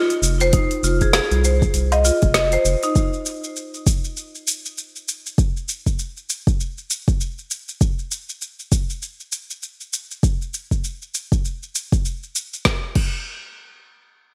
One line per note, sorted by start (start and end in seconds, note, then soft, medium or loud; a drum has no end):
0.00 0.39 F4 loud
0.10 closed hi-hat soft
0.10 shaker soft
0.22 0.59 F1 medium
0.22 shaker medium
0.40 0.52 C5 loud
0.40 closed hi-hat soft
0.40 shaker soft
0.53 0.70 D#4 medium
0.53 kick loud
0.53 closed hi-hat medium
0.53 shaker soft
0.71 closed hi-hat soft
0.71 shaker soft
0.83 1.20 F1 loud
0.83 1.01 F4 medium
0.83 shaker medium
1.01 1.09 G#4 medium
1.01 kick medium
1.01 closed hi-hat soft
1.01 shaker soft
1.13 1.43 G#4 medium
1.13 snare medium
1.13 closed hi-hat medium
1.13 low woodblock medium
1.13 shaker soft
1.31 1.66 C2 loud
1.31 closed hi-hat soft
1.31 shaker soft
1.44 1.61 C5 medium
1.44 shaker medium
1.62 kick loud
1.62 shaker soft
1.74 2.11 C2 medium
1.74 closed hi-hat medium
1.74 shaker soft
1.92 2.03 D#5 loud
1.92 closed hi-hat soft
1.92 low woodblock medium
1.92 shaker soft
2.05 2.21 F4 medium
2.05 shaker medium
2.22 2.57 F1 loud
2.22 kick loud
2.22 closed hi-hat soft
2.22 shaker soft
2.34 2.45 D#5 medium
2.34 snare medium
2.34 closed hi-hat medium
2.34 shaker soft
2.52 2.65 C5 medium
2.52 closed hi-hat soft
2.52 shaker soft
2.65 2.76 F1 medium
2.65 shaker medium
2.83 2.90 D#4 medium
2.83 closed hi-hat soft
2.83 shaker soft
2.96 kick loud
2.96 shaker soft
3.13 shaker soft
3.26 shaker medium
3.44 shaker soft
3.56 shaker soft
3.74 shaker soft
3.87 kick loud
3.87 shaker medium
4.04 shaker soft
4.17 shaker soft
4.35 shaker soft
4.47 shaker medium
4.65 shaker soft
4.78 shaker soft
4.96 shaker soft
5.08 shaker medium
5.26 shaker soft
5.38 kick loud
5.38 shaker soft
5.57 shaker soft
5.69 shaker medium
5.86 kick medium
5.86 shaker soft
5.99 shaker soft
6.17 shaker soft
6.30 shaker medium
6.47 kick medium
6.47 shaker soft
6.60 shaker soft
6.78 shaker soft
6.90 shaker medium
7.08 kick medium
7.08 shaker soft
7.21 shaker soft
7.38 shaker soft
7.51 shaker medium
7.68 shaker soft
7.81 kick medium
7.81 shaker soft
7.99 shaker soft
8.11 shaker medium
8.29 shaker soft
8.42 shaker soft
8.59 shaker soft
8.72 kick medium
8.72 shaker medium
8.90 shaker soft
9.02 shaker soft
9.20 shaker soft
9.32 shaker medium
9.50 shaker soft
9.63 shaker soft
9.81 shaker soft
9.93 shaker medium
10.11 shaker soft
10.23 kick loud
10.23 shaker soft
10.42 shaker soft
10.54 shaker medium
10.71 kick medium
10.71 shaker soft
10.84 shaker soft
11.02 shaker soft
11.14 shaker medium
11.32 kick medium
11.32 shaker soft
11.45 shaker soft
11.63 shaker soft
11.75 shaker medium
11.92 kick medium
11.92 shaker soft
12.05 shaker soft
12.23 shaker soft
12.36 shaker medium
12.53 shaker soft
12.65 kick loud
12.65 snare medium
12.95 kick loud
12.95 crash medium